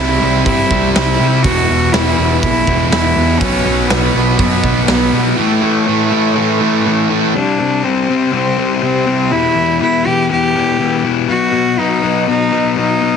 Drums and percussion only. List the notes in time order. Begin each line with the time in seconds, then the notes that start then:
0.46 kick, open hi-hat
0.71 kick
0.95 snare, open hi-hat
1.44 kick, open hi-hat
1.93 snare, open hi-hat
2.07 snare
2.43 kick, open hi-hat
2.67 kick
2.92 snare, open hi-hat
3.41 kick, open hi-hat
3.90 snare, open hi-hat
4.39 kick, open hi-hat
4.64 kick
4.88 snare, open hi-hat